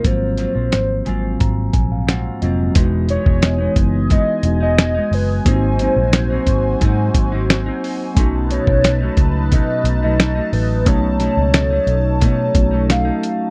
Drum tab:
HH |x-x-x-x-x-x-x-x-|x-x-x-x-x-x-x-o-|x-x-x-x-x-x-x-o-|x-x-x-x-x-x-x-o-|
SD |--o-o-------o---|----o-------o---|----o-------o---|----o-------o---|
BD |o-------o-o-----|o--o--o-o-------|o-----o-o-o-----|o--o--o-o-------|

HH |x-x-x-x-x-x-x-x-|
SD |--o-o-------o---|
BD |o-------o-o-----|